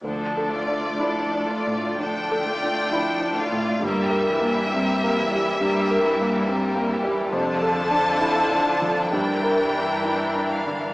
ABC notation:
X:1
M:4/4
L:1/8
Q:1/4=67
K:Dm
V:1 name="Violin section"
d4 g3 f | e6- e z | a4 g3 f |]
V:2 name="Violin section"
[DA] [Fd] [DA] [Fd] [DA] [Fd] [DA] [Fd] | [GB] [EG] [GB] [EG] [GB] [EG] [GB] [EG] | [FA]4 [EB]4 |]
V:3 name="Grand piano"
(3D,, A D (3E D A,, (3D A D (3E D A,, | (3G,, B B, (3C B, G, (3G,, B B, (3C B, G, | (3F,, A D (3E D F, (3G,, B D (3E D D, |]
V:4 name="Viola section" clef=bass
[F,D] [A,F] [F,D] [A,F] [F,D] [A,F] [F,D] [A,F] | [G,B,] [E,G,] [G,B,] [E,G,] [G,B,] [E,G,] [G,B,] [E,G,] | [D,D]4 [E,D]4 |]
V:5 name="Cello section" clef=bass
D,,2 D,,2 D,,2 D,,2 | G,,2 G,,2 G,,2 G,,2 | F,,4 G,,4 |]
V:6 name="Double bass section" clef=bass
D,,2 z6 | G,,,2 z6 | F,,,2 z2 G,,,2 z2 |]